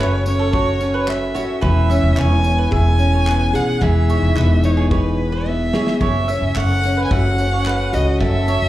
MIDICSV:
0, 0, Header, 1, 6, 480
1, 0, Start_track
1, 0, Tempo, 547945
1, 1424, Time_signature, 4, 2, 24, 8
1, 7611, End_track
2, 0, Start_track
2, 0, Title_t, "Violin"
2, 0, Program_c, 0, 40
2, 0, Note_on_c, 0, 73, 83
2, 228, Note_off_c, 0, 73, 0
2, 239, Note_on_c, 0, 73, 96
2, 956, Note_on_c, 0, 76, 80
2, 969, Note_off_c, 0, 73, 0
2, 1430, Note_off_c, 0, 76, 0
2, 1436, Note_on_c, 0, 76, 92
2, 1920, Note_on_c, 0, 80, 105
2, 1934, Note_off_c, 0, 76, 0
2, 2392, Note_off_c, 0, 80, 0
2, 2399, Note_on_c, 0, 80, 113
2, 3115, Note_on_c, 0, 78, 96
2, 3128, Note_off_c, 0, 80, 0
2, 3353, Note_on_c, 0, 76, 101
2, 3366, Note_off_c, 0, 78, 0
2, 4072, Note_on_c, 0, 73, 90
2, 4085, Note_off_c, 0, 76, 0
2, 4300, Note_off_c, 0, 73, 0
2, 4305, Note_on_c, 0, 71, 84
2, 4790, Note_on_c, 0, 76, 91
2, 4803, Note_off_c, 0, 71, 0
2, 5265, Note_off_c, 0, 76, 0
2, 5270, Note_on_c, 0, 76, 91
2, 5759, Note_on_c, 0, 78, 108
2, 5772, Note_off_c, 0, 76, 0
2, 6166, Note_off_c, 0, 78, 0
2, 6171, Note_on_c, 0, 80, 77
2, 6239, Note_on_c, 0, 78, 101
2, 6253, Note_off_c, 0, 80, 0
2, 6959, Note_on_c, 0, 75, 87
2, 6972, Note_off_c, 0, 78, 0
2, 7193, Note_off_c, 0, 75, 0
2, 7196, Note_on_c, 0, 76, 115
2, 7611, Note_off_c, 0, 76, 0
2, 7611, End_track
3, 0, Start_track
3, 0, Title_t, "Mandolin"
3, 0, Program_c, 1, 25
3, 0, Note_on_c, 1, 71, 80
3, 100, Note_off_c, 1, 71, 0
3, 344, Note_on_c, 1, 69, 74
3, 458, Note_off_c, 1, 69, 0
3, 462, Note_on_c, 1, 73, 87
3, 577, Note_off_c, 1, 73, 0
3, 823, Note_on_c, 1, 71, 70
3, 938, Note_off_c, 1, 71, 0
3, 1179, Note_on_c, 1, 73, 82
3, 1295, Note_off_c, 1, 73, 0
3, 1414, Note_on_c, 1, 71, 102
3, 1646, Note_off_c, 1, 71, 0
3, 1662, Note_on_c, 1, 76, 78
3, 1891, Note_off_c, 1, 76, 0
3, 1898, Note_on_c, 1, 73, 75
3, 2015, Note_off_c, 1, 73, 0
3, 2264, Note_on_c, 1, 71, 68
3, 2378, Note_off_c, 1, 71, 0
3, 2385, Note_on_c, 1, 76, 75
3, 2498, Note_off_c, 1, 76, 0
3, 2749, Note_on_c, 1, 73, 65
3, 2860, Note_off_c, 1, 73, 0
3, 2860, Note_on_c, 1, 71, 77
3, 3200, Note_off_c, 1, 71, 0
3, 3345, Note_on_c, 1, 68, 98
3, 3572, Note_off_c, 1, 68, 0
3, 3587, Note_on_c, 1, 73, 72
3, 3827, Note_off_c, 1, 73, 0
3, 3827, Note_on_c, 1, 71, 73
3, 3939, Note_off_c, 1, 71, 0
3, 4179, Note_on_c, 1, 68, 72
3, 4295, Note_off_c, 1, 68, 0
3, 4301, Note_on_c, 1, 73, 88
3, 4416, Note_off_c, 1, 73, 0
3, 4663, Note_on_c, 1, 71, 77
3, 4777, Note_off_c, 1, 71, 0
3, 5024, Note_on_c, 1, 73, 78
3, 5138, Note_off_c, 1, 73, 0
3, 5262, Note_on_c, 1, 73, 93
3, 5491, Note_off_c, 1, 73, 0
3, 5501, Note_on_c, 1, 76, 77
3, 5731, Note_off_c, 1, 76, 0
3, 5745, Note_on_c, 1, 73, 78
3, 5859, Note_off_c, 1, 73, 0
3, 6105, Note_on_c, 1, 71, 64
3, 6219, Note_off_c, 1, 71, 0
3, 6230, Note_on_c, 1, 76, 77
3, 6342, Note_off_c, 1, 76, 0
3, 6595, Note_on_c, 1, 73, 62
3, 6704, Note_off_c, 1, 73, 0
3, 6713, Note_on_c, 1, 71, 85
3, 7048, Note_off_c, 1, 71, 0
3, 7189, Note_on_c, 1, 69, 100
3, 7416, Note_off_c, 1, 69, 0
3, 7427, Note_on_c, 1, 73, 73
3, 7611, Note_off_c, 1, 73, 0
3, 7611, End_track
4, 0, Start_track
4, 0, Title_t, "Steel-string acoustic guitar"
4, 0, Program_c, 2, 25
4, 0, Note_on_c, 2, 42, 81
4, 0, Note_on_c, 2, 57, 62
4, 0, Note_on_c, 2, 61, 63
4, 0, Note_on_c, 2, 66, 74
4, 231, Note_off_c, 2, 61, 0
4, 235, Note_on_c, 2, 61, 61
4, 468, Note_off_c, 2, 66, 0
4, 478, Note_on_c, 2, 66, 65
4, 702, Note_off_c, 2, 61, 0
4, 706, Note_on_c, 2, 61, 61
4, 933, Note_off_c, 2, 57, 0
4, 943, Note_on_c, 2, 57, 53
4, 1172, Note_off_c, 2, 66, 0
4, 1183, Note_on_c, 2, 66, 81
4, 1420, Note_on_c, 2, 52, 83
4, 1428, Note_off_c, 2, 42, 0
4, 1471, Note_off_c, 2, 57, 0
4, 1471, Note_off_c, 2, 66, 0
4, 1661, Note_off_c, 2, 61, 0
4, 1665, Note_on_c, 2, 61, 60
4, 1899, Note_on_c, 2, 59, 68
4, 2123, Note_off_c, 2, 61, 0
4, 2134, Note_on_c, 2, 61, 61
4, 2372, Note_on_c, 2, 68, 73
4, 2600, Note_off_c, 2, 61, 0
4, 2611, Note_on_c, 2, 61, 58
4, 2851, Note_off_c, 2, 59, 0
4, 2854, Note_on_c, 2, 59, 55
4, 3090, Note_off_c, 2, 68, 0
4, 3094, Note_on_c, 2, 68, 79
4, 3332, Note_off_c, 2, 52, 0
4, 3336, Note_on_c, 2, 52, 86
4, 3385, Note_off_c, 2, 61, 0
4, 3589, Note_on_c, 2, 63, 59
4, 3824, Note_off_c, 2, 59, 0
4, 3828, Note_on_c, 2, 59, 59
4, 4058, Note_off_c, 2, 63, 0
4, 4069, Note_on_c, 2, 63, 60
4, 4301, Note_off_c, 2, 68, 0
4, 4304, Note_on_c, 2, 68, 65
4, 4546, Note_off_c, 2, 63, 0
4, 4771, Note_off_c, 2, 59, 0
4, 4781, Note_on_c, 2, 59, 57
4, 5019, Note_off_c, 2, 68, 0
4, 5029, Note_on_c, 2, 68, 76
4, 5263, Note_on_c, 2, 42, 80
4, 5289, Note_off_c, 2, 52, 0
4, 5311, Note_off_c, 2, 59, 0
4, 5315, Note_off_c, 2, 68, 0
4, 5513, Note_on_c, 2, 61, 63
4, 5749, Note_on_c, 2, 57, 55
4, 5994, Note_off_c, 2, 61, 0
4, 5998, Note_on_c, 2, 61, 60
4, 6247, Note_on_c, 2, 66, 66
4, 6472, Note_off_c, 2, 61, 0
4, 6476, Note_on_c, 2, 61, 59
4, 6697, Note_off_c, 2, 57, 0
4, 6708, Note_on_c, 2, 57, 53
4, 6935, Note_off_c, 2, 66, 0
4, 6946, Note_on_c, 2, 66, 78
4, 7174, Note_off_c, 2, 42, 0
4, 7185, Note_on_c, 2, 42, 79
4, 7422, Note_off_c, 2, 61, 0
4, 7425, Note_on_c, 2, 61, 70
4, 7611, Note_off_c, 2, 42, 0
4, 7611, Note_off_c, 2, 57, 0
4, 7611, Note_off_c, 2, 61, 0
4, 7611, Note_off_c, 2, 66, 0
4, 7611, End_track
5, 0, Start_track
5, 0, Title_t, "Upright bass"
5, 0, Program_c, 3, 32
5, 0, Note_on_c, 3, 30, 93
5, 1147, Note_off_c, 3, 30, 0
5, 1423, Note_on_c, 3, 28, 106
5, 1755, Note_off_c, 3, 28, 0
5, 1782, Note_on_c, 3, 28, 102
5, 1893, Note_off_c, 3, 28, 0
5, 1901, Note_on_c, 3, 28, 97
5, 2347, Note_off_c, 3, 28, 0
5, 2380, Note_on_c, 3, 28, 101
5, 3066, Note_off_c, 3, 28, 0
5, 3097, Note_on_c, 3, 35, 86
5, 3321, Note_off_c, 3, 35, 0
5, 3343, Note_on_c, 3, 28, 100
5, 3674, Note_off_c, 3, 28, 0
5, 3699, Note_on_c, 3, 28, 98
5, 3811, Note_off_c, 3, 28, 0
5, 3818, Note_on_c, 3, 28, 103
5, 4986, Note_off_c, 3, 28, 0
5, 5263, Note_on_c, 3, 30, 103
5, 5595, Note_off_c, 3, 30, 0
5, 5619, Note_on_c, 3, 30, 90
5, 5732, Note_off_c, 3, 30, 0
5, 5746, Note_on_c, 3, 30, 91
5, 6191, Note_off_c, 3, 30, 0
5, 6227, Note_on_c, 3, 30, 107
5, 6912, Note_off_c, 3, 30, 0
5, 6952, Note_on_c, 3, 37, 86
5, 7170, Note_off_c, 3, 37, 0
5, 7187, Note_on_c, 3, 30, 110
5, 7518, Note_off_c, 3, 30, 0
5, 7552, Note_on_c, 3, 30, 87
5, 7611, Note_off_c, 3, 30, 0
5, 7611, End_track
6, 0, Start_track
6, 0, Title_t, "Drums"
6, 226, Note_on_c, 9, 54, 75
6, 314, Note_off_c, 9, 54, 0
6, 468, Note_on_c, 9, 36, 124
6, 555, Note_off_c, 9, 36, 0
6, 705, Note_on_c, 9, 54, 62
6, 793, Note_off_c, 9, 54, 0
6, 946, Note_on_c, 9, 39, 117
6, 1034, Note_off_c, 9, 39, 0
6, 1190, Note_on_c, 9, 54, 61
6, 1277, Note_off_c, 9, 54, 0
6, 1425, Note_on_c, 9, 36, 113
6, 1512, Note_off_c, 9, 36, 0
6, 1670, Note_on_c, 9, 54, 65
6, 1758, Note_off_c, 9, 54, 0
6, 1903, Note_on_c, 9, 39, 102
6, 1991, Note_off_c, 9, 39, 0
6, 2140, Note_on_c, 9, 54, 72
6, 2228, Note_off_c, 9, 54, 0
6, 2383, Note_on_c, 9, 36, 121
6, 2470, Note_off_c, 9, 36, 0
6, 2620, Note_on_c, 9, 54, 62
6, 2708, Note_off_c, 9, 54, 0
6, 2865, Note_on_c, 9, 39, 109
6, 2953, Note_off_c, 9, 39, 0
6, 3108, Note_on_c, 9, 54, 65
6, 3196, Note_off_c, 9, 54, 0
6, 3343, Note_on_c, 9, 36, 104
6, 3431, Note_off_c, 9, 36, 0
6, 3588, Note_on_c, 9, 54, 62
6, 3675, Note_off_c, 9, 54, 0
6, 3826, Note_on_c, 9, 39, 108
6, 3914, Note_off_c, 9, 39, 0
6, 4061, Note_on_c, 9, 54, 65
6, 4149, Note_off_c, 9, 54, 0
6, 4303, Note_on_c, 9, 36, 127
6, 4391, Note_off_c, 9, 36, 0
6, 5024, Note_on_c, 9, 38, 107
6, 5111, Note_off_c, 9, 38, 0
6, 5140, Note_on_c, 9, 38, 91
6, 5227, Note_off_c, 9, 38, 0
6, 5263, Note_on_c, 9, 36, 104
6, 5351, Note_off_c, 9, 36, 0
6, 5507, Note_on_c, 9, 54, 63
6, 5595, Note_off_c, 9, 54, 0
6, 5745, Note_on_c, 9, 39, 107
6, 5833, Note_off_c, 9, 39, 0
6, 5986, Note_on_c, 9, 54, 66
6, 6074, Note_off_c, 9, 54, 0
6, 6228, Note_on_c, 9, 36, 126
6, 6315, Note_off_c, 9, 36, 0
6, 6466, Note_on_c, 9, 54, 60
6, 6553, Note_off_c, 9, 54, 0
6, 6707, Note_on_c, 9, 39, 125
6, 6794, Note_off_c, 9, 39, 0
6, 6951, Note_on_c, 9, 54, 61
6, 7039, Note_off_c, 9, 54, 0
6, 7188, Note_on_c, 9, 36, 98
6, 7276, Note_off_c, 9, 36, 0
6, 7428, Note_on_c, 9, 54, 65
6, 7516, Note_off_c, 9, 54, 0
6, 7611, End_track
0, 0, End_of_file